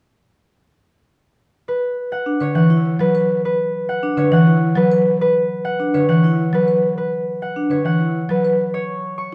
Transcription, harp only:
1.68 2.99 B4 medium
2.12 2.54 F#5 medium
2.42 4.16 C#5 medium
2.55 3.88 F#5 medium
3.00 3.44 B4 medium
3.45 4.76 B4 medium
3.89 4.32 F#5 medium
4.18 5.93 C#5 medium
4.33 5.63 F#5 medium
4.77 5.20 B4 medium
5.21 6.53 B4 medium
5.65 6.08 F#5 medium
5.94 7.70 C#5 medium
6.09 7.41 F#5 medium
6.54 6.96 B4 medium
6.98 8.29 B4 medium
7.42 7.84 F#5 medium
7.71 8.73 C#5 soft
7.85 9.35 F#5 medium
8.30 8.76 B4 medium
8.74 9.35 C#5 medium
9.18 9.35 C#6 medium

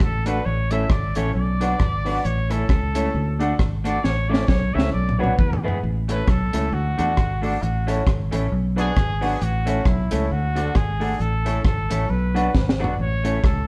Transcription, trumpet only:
0.00 0.28 A4 loud
0.26 0.47 B4 loud
0.45 0.73 C#5 loud
0.71 0.92 E5 loud
0.91 1.18 D5 loud
1.16 1.34 C#5 loud
1.35 2.26 D5 loud
2.25 2.53 C#5 loud
2.51 3.59 A4 medium
3.85 4.05 D5 loud
4.04 4.31 C#5 loud
4.29 4.49 D5 loud
4.48 4.75 C#5 loud
4.74 4.92 E5 loud
4.93 5.20 D5 medium
5.19 5.37 C#5 medium
5.38 5.62 B4 medium
6.11 6.31 B4 loud
6.29 6.75 A4 loud
6.73 7.44 F#4 loud
7.44 7.64 D4 medium
7.62 8.07 F#4 medium
8.79 9.44 G#4 loud
9.43 9.89 F#4 medium
9.87 10.33 E4 medium
10.32 10.77 F#4 loud
10.76 11.22 G#4 loud
11.21 11.65 A4 loud
11.65 12.11 A4 loud
12.10 12.75 B4 loud
13.00 13.46 C#5 loud
13.44 13.67 A4 medium

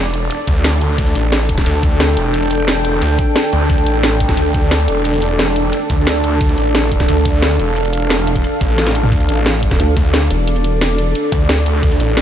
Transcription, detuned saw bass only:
0.00 0.29 E1 medium
0.48 0.80 D2 loud
0.81 0.97 D2 loud
0.98 1.14 D2 loud
1.15 1.65 A1 loud
1.66 1.82 D2 loud
1.83 2.16 D2 loud
2.17 3.00 E1 loud
3.02 3.17 D2 loud
3.53 3.68 D2 medium
3.70 3.85 D2 loud
3.86 4.36 A1 loud
4.37 4.53 D2 loud
4.54 4.87 D2 loud
4.88 5.72 E1 loud
5.90 6.22 D2 loud
6.24 6.39 D2 medium
6.41 6.56 D2 loud
6.58 7.07 A1 loud
7.09 7.24 D2 loud
7.25 7.58 D2 loud
7.59 8.43 E1 loud
8.61 9.11 A1 loud
9.12 9.28 D2 medium
9.29 9.78 A1 loud
9.97 10.29 D2 loud
11.32 11.65 D2 loud
11.66 11.82 D2 medium
11.83 11.99 D2 loud
12.00 12.22 A1 loud

